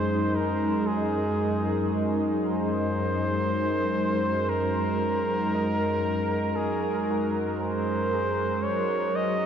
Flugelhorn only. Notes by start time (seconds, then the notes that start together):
Already playing: C5
0.35 A#4
0.87 G#4
2.42 C5
4.49 A#4
6.56 G#4
7.59 C5
8.63 C#5
9.15 D#5